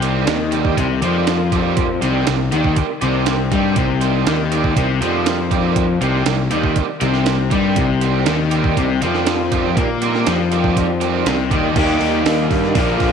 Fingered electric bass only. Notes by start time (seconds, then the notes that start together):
Already playing: C2
0.28 D#2
0.78 C2
1.02 F2
2.02 C2
2.27 C2
2.51 D#2
3.02 C2
3.52 G2
3.76 C2
4.26 D#2
4.76 C2
5.01 F2
6.01 C2
6.26 C2
6.50 D#2
7.01 C2
7.51 G2
7.77 C2
8.27 D#2
8.77 C2
9.02 F2
9.77 A#2
10.27 F2
11.26 C2
11.51 D#2
11.76 D#2
12.01 D#2
12.26 D#2
12.51 G2
12.75 A#1
13.01 A#1